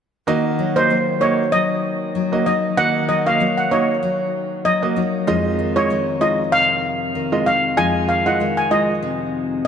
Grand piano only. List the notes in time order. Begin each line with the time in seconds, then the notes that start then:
0.27 A#3 F#4 D#5
0.76 A#3 F#4 D#5
1.21 A#3 F#4 D#5
2.32 A#3 F#4 D#5
2.77 A#3 F#4 D#5
3.26 A#3 F#4 D#5
3.71 A#3 F#4 D#5
4.82 A#3 F#4 D#5
5.27 G#3 F4 D#5
5.76 G#3 F4 D#5
6.21 G#3 F4 D#5
7.32 G#3 F4 D#5
7.77 G#3 F4 D#5
8.26 G#3 F4 D#5
8.71 G#3 F4 D#5